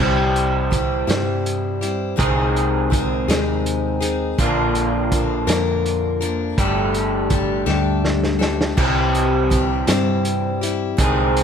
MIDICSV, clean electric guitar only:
0, 0, Header, 1, 2, 480
1, 0, Start_track
1, 0, Tempo, 733496
1, 1425, Time_signature, 6, 3, 24, 8
1, 7482, End_track
2, 0, Start_track
2, 0, Title_t, "Clean electric guitar"
2, 0, Program_c, 0, 27
2, 0, Note_on_c, 0, 48, 75
2, 0, Note_on_c, 0, 52, 72
2, 0, Note_on_c, 0, 55, 86
2, 0, Note_on_c, 0, 60, 77
2, 1, Note_on_c, 0, 67, 79
2, 1412, Note_off_c, 0, 48, 0
2, 1415, Note_off_c, 0, 52, 0
2, 1415, Note_off_c, 0, 55, 0
2, 1417, Note_off_c, 0, 60, 0
2, 1419, Note_off_c, 0, 67, 0
2, 1431, Note_on_c, 0, 48, 76
2, 1433, Note_on_c, 0, 51, 80
2, 1435, Note_on_c, 0, 56, 83
2, 1440, Note_on_c, 0, 60, 82
2, 1442, Note_on_c, 0, 68, 85
2, 2853, Note_off_c, 0, 48, 0
2, 2854, Note_off_c, 0, 51, 0
2, 2855, Note_off_c, 0, 56, 0
2, 2857, Note_off_c, 0, 60, 0
2, 2858, Note_off_c, 0, 68, 0
2, 2872, Note_on_c, 0, 46, 73
2, 2873, Note_on_c, 0, 50, 84
2, 2879, Note_on_c, 0, 58, 75
2, 2882, Note_on_c, 0, 62, 75
2, 2884, Note_on_c, 0, 65, 85
2, 4293, Note_off_c, 0, 46, 0
2, 4293, Note_off_c, 0, 50, 0
2, 4297, Note_off_c, 0, 58, 0
2, 4298, Note_off_c, 0, 62, 0
2, 4299, Note_off_c, 0, 65, 0
2, 4305, Note_on_c, 0, 55, 75
2, 4311, Note_on_c, 0, 57, 78
2, 4315, Note_on_c, 0, 62, 74
2, 4317, Note_on_c, 0, 67, 79
2, 5729, Note_off_c, 0, 55, 0
2, 5733, Note_off_c, 0, 57, 0
2, 5735, Note_off_c, 0, 62, 0
2, 5736, Note_off_c, 0, 67, 0
2, 5741, Note_on_c, 0, 48, 78
2, 5747, Note_on_c, 0, 52, 83
2, 5751, Note_on_c, 0, 55, 80
2, 5753, Note_on_c, 0, 60, 86
2, 5754, Note_on_c, 0, 67, 84
2, 7168, Note_off_c, 0, 48, 0
2, 7171, Note_off_c, 0, 52, 0
2, 7173, Note_off_c, 0, 55, 0
2, 7174, Note_off_c, 0, 60, 0
2, 7175, Note_off_c, 0, 67, 0
2, 7186, Note_on_c, 0, 48, 78
2, 7193, Note_on_c, 0, 51, 86
2, 7194, Note_on_c, 0, 56, 78
2, 7198, Note_on_c, 0, 60, 86
2, 7205, Note_on_c, 0, 68, 88
2, 7482, Note_off_c, 0, 48, 0
2, 7482, Note_off_c, 0, 51, 0
2, 7482, Note_off_c, 0, 56, 0
2, 7482, Note_off_c, 0, 60, 0
2, 7482, Note_off_c, 0, 68, 0
2, 7482, End_track
0, 0, End_of_file